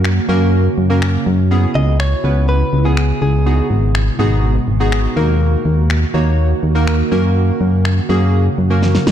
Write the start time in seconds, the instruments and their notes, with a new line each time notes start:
Already playing: fm bass F#2, ambient pad C#3 A#3 F#4
0.05 finger snap
0.29 fm bass F#2, synth keys A#3 C#4 F#4 A#4
0.78 fm bass F#2
0.90 synth keys A#3 C#4 F#4 A#4
1.02 finger snap
1.26 fm bass F#2
1.51 ambient pad C#3 B3 E4, synth keys B3 C#4 E4 G#4
1.75 fm bass C#2, clean electric guitar D#5
2.00 clean electric guitar C#5, finger snap
2.24 fm bass C#2, synth keys B3 C#4 E4 B4
2.49 clean electric guitar B4
2.73 fm bass C#2
2.85 synth keys B3 C#4 E4 G#4, clean electric guitar G#4
2.97 finger snap
3.22 fm bass C#2, clean electric guitar G#4
3.46 ambient pad B2 G#3 F#4, synth keys B3 D#4 F#4 G#4
3.70 fm bass G#1
3.95 finger snap
4.19 fm bass G#1, synth keys B3 D#4 F#4 G#4
4.68 fm bass G#1
4.80 synth keys B3 D#4 F#4 G#4
4.92 finger snap
5.16 fm bass D#2, ambient pad D#3 A#3, synth keys A#3 D#4 F#4 A#4
5.65 fm bass D#2
5.90 finger snap
6.14 fm bass D#2, synth keys A#3 D#4 F#4 C#5
6.63 fm bass D#2
6.75 synth keys A#3 D#4 F#4 A#4
6.87 finger snap
7.11 fm bass F#2, ambient pad C#3, synth keys A#3 C#4 F#4 A#4
7.61 fm bass F#2
7.85 finger snap
8.09 fm bass F#2, synth keys A#3 C#4 F#4 G#4
8.58 fm bass F#2
8.70 synth keys A#3 C#4 F#4 A#4
8.83 snare
8.95 snare
9.07 fm bass F#2, snare